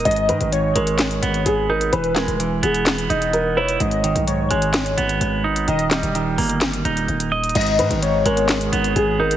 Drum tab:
CC |--------------------------------|--------------------------------|--------------------------------|--------------------------------|
HH |xxx-x-x-x---x-x-x-x-x-x-x-----x-|x-x-x-x-x---x-x-x-x-x-x-x-----x-|x-x-x-x-x---x-x-x-x-x-x-x-----x-|x-x-x-x-x---o-x-x-x-x-x-x-x---xx|
CP |----------------x---------------|----x-----------x---------------|----------------x---------------|----x-----------x---------------|
SD |----------------o---------------|----o-----------o---------------|----------------o---------------|----o-----------o---------------|

CC |x-------------------------------|
HH |xxx-x-x-x---x-x-x-x-x-x-x-----x-|
CP |----------------x---------------|
SD |----------------o---------------|